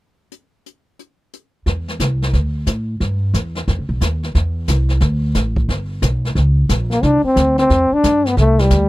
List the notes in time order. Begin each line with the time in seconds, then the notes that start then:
0.32 closed hi-hat
0.66 closed hi-hat
0.99 closed hi-hat
1.33 closed hi-hat
1.66 E2, brush sweep, kick, snare
1.88 snare
2.00 C2, kick, snare, hi-hat pedal
2.22 snare
2.33 D2, brush sweep, kick, snare
2.67 A2, kick, snare, hi-hat pedal
3.00 G2, brush sweep, kick, snare
3.34 E2, kick, snare, hi-hat pedal
3.55 snare
3.67 F2, brush sweep, kick, snare
3.79 C#2
3.89 B1
4.01 D#2, kick, snare, hi-hat pedal
4.23 snare
4.35 E2, brush sweep, kick, snare
4.68 C2, kick, snare, hi-hat pedal
4.89 snare
5.00 D2, brush sweep, kick, snare
5.35 A1, kick, snare, hi-hat pedal
5.56 kick
5.69 G1, brush sweep, kick, snare
6.02 B1, kick, snare, hi-hat pedal
6.25 snare
6.35 C#2, brush sweep, kick, snare
6.69 A#1, kick, snare, hi-hat pedal
6.91 A#3, snare
7.03 C2 D4, brush sweep, kick, snare
7.23 C4, muted upright bass stroke
7.36 D2, kick, snare, hi-hat pedal
7.58 C4, snare
7.70 E2, brush sweep, kick, snare
7.91 D4, muted upright bass stroke
8.04 G2, kick, snare, hi-hat pedal
8.25 B3, snare
8.37 C2 A3, brush sweep, kick, snare
8.59 G3, snare
8.70 D2, kick, snare, hi-hat pedal